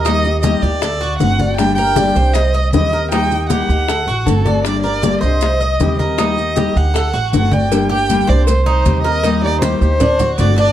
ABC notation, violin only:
X:1
M:4/4
L:1/8
Q:1/4=157
K:Gm
V:1 name="Violin"
e2 e d3 ^f2 | g g3 e2 e2 | g2 ^f4 A2 | d d2 e4 e- |
e3 ^f3 f g- | g g2 d c c2 e- | e d c c3 d d |]